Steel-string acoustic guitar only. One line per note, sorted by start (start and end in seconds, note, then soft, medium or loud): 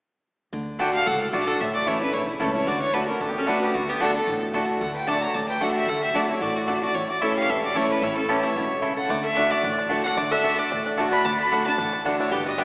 0.53 0.78 D3 medium
0.79 1.05 D3 medium
0.79 1.05 A3 medium
0.79 1.06 D4 medium
0.79 1.06 F#4 medium
1.07 1.58 A2 medium
1.32 1.58 D3 medium
1.32 1.59 A3 medium
1.32 1.59 D4 medium
1.32 1.59 F#4 medium
1.60 2.11 A2 medium
1.86 2.00 E3 medium
1.86 2.01 A3 medium
1.86 2.01 C#4 medium
1.86 1.99 E4 medium
2.00 2.14 C#4 medium
2.00 2.13 E4 medium
2.13 2.64 E2 medium
2.40 2.54 E3 medium
2.40 2.54 A3 medium
2.40 2.54 C#4 medium
2.40 2.53 E4 medium
2.54 2.67 C#4 soft
2.54 2.66 E4 medium
2.67 2.92 D3 medium
2.93 3.07 D3 medium
2.93 3.08 A3 medium
2.93 3.08 D4 medium
2.93 3.07 F#4 medium
3.08 3.21 D4 soft
3.08 3.20 F#4 medium
3.21 3.72 A2 medium
3.47 3.73 D3 medium
3.47 3.73 A3 medium
3.47 3.73 D4 medium
3.47 3.74 F#4 medium
3.74 3.99 D3 medium
4.00 4.14 D3 medium
4.00 4.14 A3 medium
4.00 4.15 D4 medium
4.00 4.13 F#4 loud
4.14 4.28 D4 soft
4.14 4.27 F#4 medium
4.27 4.79 A2 medium
4.53 4.79 D3 medium
4.53 4.80 A3 medium
4.53 4.80 D4 loud
4.53 4.80 F#4 medium
4.81 5.06 D3 medium
5.07 5.33 D3 medium
5.07 5.34 A3 medium
5.07 5.34 D4 medium
5.07 5.34 F#4 medium
5.36 5.86 A2 medium
5.61 5.87 D3 medium
5.61 5.87 A3 medium
5.61 5.87 D4 medium
5.61 5.88 F#4 loud
5.88 6.13 D3 medium
6.14 6.28 D3 medium
6.14 6.29 A3 medium
6.14 6.29 D4 medium
6.14 6.27 F#4 loud
6.29 6.42 D4 soft
6.29 6.41 F#4 medium
6.41 6.93 A2 medium
6.68 6.82 D3 medium
6.68 6.82 A3 medium
6.68 6.83 D4 medium
6.68 6.81 F#4 loud
6.82 6.96 D4 soft
6.82 6.95 F#4 medium
6.95 7.46 A2 medium
7.22 7.48 E3 medium
7.22 7.48 A3 medium
7.22 7.48 C#4 medium
7.22 7.49 E4 medium
7.49 8.00 E2 medium
7.75 8.01 E3 medium
7.75 8.01 A3 medium
7.75 8.02 C#4 medium
7.75 8.02 E4 medium
8.02 8.53 A2 medium
8.28 8.43 E3 medium
8.28 8.43 A3 medium
8.28 8.43 C#4 medium
8.28 8.42 E4 medium
8.43 8.57 C#4 soft
8.43 8.55 E4 medium
8.56 8.82 B2 medium
8.82 9.08 C#3 medium
9.09 9.35 D3 medium
9.37 9.62 D3 medium
9.37 9.63 A3 medium
9.37 9.63 D4 medium
9.37 9.63 F#4 medium
9.63 10.14 A2 medium
9.89 10.04 D3 medium
9.89 10.04 A3 medium
9.89 10.05 D4 medium
9.89 10.03 F#4 medium
10.04 10.18 D4 medium
10.04 10.17 F#4 medium
10.18 10.42 D3 medium
10.43 10.69 D3 medium
10.43 10.70 A3 medium
10.43 10.70 D4 medium
10.43 10.70 F#4 medium
10.71 11.22 A2 medium
10.98 11.23 D3 medium
10.98 11.24 A3 medium
10.98 11.24 D4 loud
10.98 11.25 F#4 loud
11.25 11.50 D3 medium
11.51 11.65 D3 medium
11.51 11.66 A3 medium
11.51 11.66 D4 medium
11.51 11.65 F#4 medium
11.66 11.79 D4 medium
11.66 11.78 F#4 medium
11.79 12.30 A2 medium
12.05 12.31 D3 medium
12.05 12.31 A3 medium
12.05 12.31 D4 medium
12.05 12.32 F#4 medium
12.32 12.64 G2 medium
12.58 12.64 G3 medium
12.58 12.64 B3 medium
12.58 12.64 D4 medium
12.58 12.64 G4 medium